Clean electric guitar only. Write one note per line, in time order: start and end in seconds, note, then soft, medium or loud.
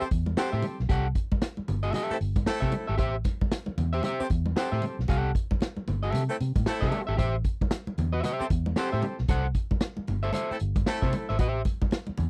0.37 0.50 G4 medium
0.37 0.50 C5 medium
0.37 0.51 F#5 medium
0.52 0.65 G4 medium
0.52 0.64 C5 medium
0.52 0.64 E5 medium
0.89 1.05 G4 medium
0.89 1.06 A4 medium
0.89 1.06 F#5 loud
1.83 1.93 G4 medium
1.83 1.93 A4 medium
1.83 1.94 E5 medium
1.94 2.15 G4 medium
1.94 2.16 A4 medium
1.94 2.16 E5 medium
2.60 2.74 G4 medium
2.60 2.73 A4 medium
2.60 2.73 E5 medium
2.87 2.96 G4 medium
2.87 2.97 A4 medium
2.87 2.97 E5 medium
2.98 3.15 G4 medium
2.98 3.15 C5 medium
2.98 3.15 E5 loud
3.93 4.02 G4 medium
3.93 4.04 C5 medium
3.93 4.04 E5 medium
4.04 4.20 G4 medium
4.04 4.21 C5 medium
4.04 4.21 E5 medium
4.56 4.69 G4 medium
4.56 4.70 C5 medium
4.56 4.70 F#5 medium
4.72 4.84 G4 medium
4.72 4.84 C5 medium
4.72 4.83 E5 medium
5.08 5.30 G4 medium
5.08 5.30 A4 medium
5.08 5.31 F#5 medium
6.03 6.23 G4 medium
6.03 6.22 A4 medium
6.03 6.22 E5 medium
6.81 7.01 G4 medium
6.81 7.01 A4 medium
6.81 7.00 E5 medium
7.07 7.16 G4 medium
7.07 7.17 A4 medium
7.07 7.16 E5 medium
7.17 7.34 G4 medium
7.17 7.35 C5 medium
7.17 7.35 E5 loud
8.13 8.22 G4 medium
8.13 8.23 C5 medium
8.13 8.24 E5 medium
8.23 8.45 G4 medium
8.23 8.45 C5 medium
8.23 8.46 E5 medium
8.77 8.89 G4 medium
8.77 8.90 C5 medium
8.77 8.90 F#5 medium
8.92 9.04 G4 medium
8.92 9.04 C5 medium
8.92 9.03 E5 medium
9.29 9.45 A4 medium
9.29 9.46 C5 medium
9.29 9.46 F#5 loud
10.23 10.31 A4 medium
10.23 10.32 C5 medium
10.23 10.33 E5 medium
10.33 10.49 A4 medium
10.33 10.50 C5 medium
10.33 10.50 E5 medium
11.02 11.14 A4 medium
11.02 11.14 C5 medium
11.02 11.13 E5 medium
11.29 11.38 A4 medium
11.29 11.38 C5 medium
11.29 11.37 E5 medium
11.39 11.60 G4 medium
11.39 11.61 C5 medium
11.39 11.61 E5 medium